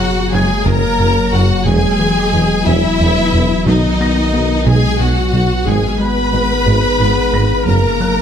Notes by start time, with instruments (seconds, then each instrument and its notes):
Already playing: sub bass F#1, french horn section F#3, synth drone F#3 A#3 F#4 C#5, viola section F#4, violin section F#4 F#5, felt piano A#5 A#6
0.00 analog synth bass F#3
0.32 double bass section F#1, tuba F#1, cello section F#2, analog synth bass F#3, french horn section G#3, viola section G#4, violin section G#4 G#5, felt piano G#6
0.66 double bass section F#1, tuba F#1, analog synth bass F#2, cello section F#2, french horn section A#3, viola section A#4, violin section A#4 A#5
0.99 double bass section F#1, tuba F#1, analog synth bass F#2, cello section F#2
1.33 double bass section F#1, tuba F#1, analog synth bass F#2, cello section F#2, french horn section F#3, viola section F#4, violin section F#4 F#5
1.66 double bass section E1, sub bass E1, tuba E1, analog synth bass E2, cello section E2, french horn section G#3, synth drone B3 B4, viola section G#4, violin section G#4 G#5
1.99 analog synth bass E3
2.33 double bass section E1, tuba E1, cello section E2, analog synth bass E3
2.66 double bass section E1, tuba E1, analog synth bass E2, cello section E2, french horn section E3, viola section E4, violin section E4 E5
3.00 double bass section E1, tuba E1, analog synth bass E2, cello section E2
3.33 double bass section E1, tuba E1, analog synth bass E2, cello section E2
3.66 sub bass B1, double bass section B1, tuba B1, analog synth bass B2, cello section B2, french horn section D#3, viola section D#4, violin section D#4 D#5
4.00 analog synth bass B3, felt piano A#6
4.33 double bass section B1, tuba B1, cello section B2, analog synth bass B3
4.66 double bass section B1, tuba B1, cello section B2, analog synth bass B2, french horn section G#3, viola section G#4, violin section G#4 G#5
4.99 double bass section B1, tuba B1, analog synth bass B2, cello section B2, french horn section F#3, viola section F#4, violin section F#4 F#5
5.33 double bass section B1, tuba B1, analog synth bass B2, cello section B2
5.66 double bass section G#1, sub bass G#1, tuba G#1, analog synth bass G#2, cello section G#2, french horn section G#3, synth drone G#3 D#4 G#4, viola section G#4, violin section G#4 G#5
6.00 analog synth bass G#3, french horn section B3, violin section B4 B5, viola section B4
6.33 double bass section G#1, tuba G#1, cello section G#2, analog synth bass G#3
6.66 double bass section G#1, tuba G#1, cello section G#2, analog synth bass G#2
7.00 double bass section G#1, tuba G#1, analog synth bass G#2, cello section G#2
7.33 double bass section G#1, tuba G#1, analog synth bass G#2, cello section G#2, felt piano A#6
7.66 sub bass F#1, tuba F#1, double bass section F#1, analog synth bass F#2, cello section F#2, synth drone F#3 C#4 F#4 A#4, french horn section A#3, viola section A#4, violin section A#4 A#5
8.00 analog synth bass F#3, felt piano F#6